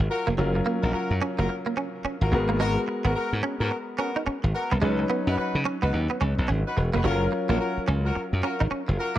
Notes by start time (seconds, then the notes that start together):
Already playing: F#3 C#4 F4 A#4
0.10 F4 F#4 A#4
0.27 F1 A#3
0.37 F#1 F#3 C#4 F4 A#4
0.55 muted clean electric guitar stroke
0.66 A#3
0.82 A#1 F4 F#4 A#4
0.93 F4 F#4 A#4, muted clean electric guitar stroke, muted slap bass stroke
1.11 F#2
1.22 C#4
1.38 F#1 A#3 F4 F#4 A#4
1.49 muted clean electric guitar stroke
1.66 A#3
1.77 C#4
2.04 C#4, muted slap bass stroke
2.21 G#1 F4 F#4 A#4
2.32 G#1 G#3 B3 F#4 A#4, muted clean electric guitar stroke
2.49 A#3
2.60 G#3 B3 F#4 A#4
2.88 muted clean electric guitar stroke
3.04 G#1 B3 F#4 A#4
3.15 B3 F#4 A#4, muted slap bass stroke
3.33 G#2
3.43 C#4
3.60 G#2 B3 F#4 A#4
3.71 muted clean electric guitar stroke
3.99 B3 C#4 F#4 A#4
4.16 D#4
4.26 C#4, muted slap bass stroke
4.44 G#1, muted clean electric guitar stroke
4.54 B3 F#4 A#4
4.72 C2 B3
4.82 C#2 F#3 G#3 C#4 D#4 B4
4.99 muted clean electric guitar stroke
5.10 B3
5.27 F#2 D#4 F#4 B4
5.37 D#4 F#4 B4, muted clean electric guitar stroke, muted slap bass stroke
5.55 C#3
5.65 C#4
5.82 C#2 B3 D#4 F#4 B4
5.93 D#2, muted clean electric guitar stroke
6.10 B3
6.21 C#2 C#4
6.38 B1
6.48 G#1 C#4
6.66 D#4 F#4 B4
6.77 E1, muted clean electric guitar stroke
6.93 F1 A#3 D#4 F#4 B4
7.04 F#1 F#3 C#4 F4 F#4 A4 A#4
7.13 A#4
7.32 muted clean electric guitar stroke
7.49 A#1 A#3 F4 F#4 A#4
7.60 F4 F#4 A#4
7.77 muted slap bass stroke
7.88 C#2 C#4
8.04 F4 F#4 A#4
8.15 muted clean electric guitar stroke, muted slap bass stroke
8.33 F#2
8.43 C#4 F4 F#4 A#4
8.60 G#1 D#4
8.71 C#4, muted slap bass stroke
8.88 F#1, muted clean electric guitar stroke
8.98 F4 F#4 A#4